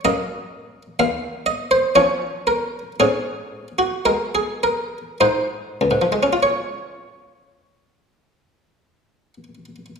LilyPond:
<<
  \new Staff \with { instrumentName = "Harpsichord" } { \time 3/4 \key des \major \tempo 4 = 53 << { ees''4 f''8 ees''16 c''16 des''8 bes'8 | aes'8. ges'16 bes'16 aes'16 bes'8 c''4 | <des, aes, f aes des' f' des''>2. | } \\ { bes2 des'4 | des'2 ees'4 | r2. | } >> }
  \new Staff \with { instrumentName = "Harpsichord" } { \clef bass \time 3/4 \key des \major ges,4 ees,4 f4 | aes,4 aes4 aes,4 | r2. | }
>>